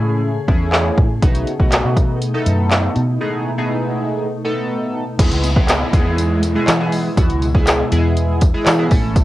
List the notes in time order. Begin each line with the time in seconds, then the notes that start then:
Already playing: A2 C#3 A3 C#4 E4 G#4
0.48 E2 A3 C#4 E4 G#4, kick
0.73 snare, clap
0.98 A2, kick
1.22 B1 B2 A3 B3 D#4 F#4, kick, closed hi-hat, swell
1.35 closed hi-hat
1.47 closed hi-hat
1.59 B1 A3 B3 D#4 F#4, kick
1.72 snare, clap, closed hi-hat
1.84 B2
1.97 kick, closed hi-hat
2.22 closed hi-hat
2.34 A3 B3 D#4 A4
2.46 F#2, closed hi-hat
2.71 snare, clap, closed hi-hat
2.96 B2, closed hi-hat
3.21 A3 B3 D#4 G#4
3.58 A3 B3 D#4 G#4
4.45 A3 B3 D#4 A4
5.19 E2 B2 G#3 B3 E4 G#4, kick, closed hi-hat, crash, downlifter
5.31 C#2, closed hi-hat
5.44 closed hi-hat, tambourine
5.56 G#3 B3 E4 G#4, kick
5.69 snare, clap, closed hi-hat, tambourine
5.93 E2 G#3 B3 E4 G#4, kick, closed hi-hat, tambourine
6.18 closed hi-hat, tambourine
6.43 closed hi-hat, tambourine
6.55 G#3 B3 E4 G#4
6.68 E3, snare, clap, closed hi-hat, tambourine
6.80 G#3 B3 E4 G#4
6.92 open hi-hat, tambourine
7.17 E2 G#3 B3 E4 F#4, kick, closed hi-hat, tambourine
7.30 C#2, closed hi-hat
7.42 closed hi-hat, tambourine
7.54 G#3 B3 E4 G#4, kick
7.67 snare, clap, closed hi-hat, tambourine
7.92 E2 G#3 B3 E4 G#4, closed hi-hat, tambourine
8.17 closed hi-hat, tambourine
8.41 kick, closed hi-hat, tambourine
8.54 G#3 B3 E4 G#4
8.66 E3, snare, clap, closed hi-hat, tambourine
8.78 G#3 B3 E4 G#4
8.91 A1 C#3 A3 C#4 E4 A4, kick, open hi-hat, tambourine
9.16 kick, closed hi-hat, tambourine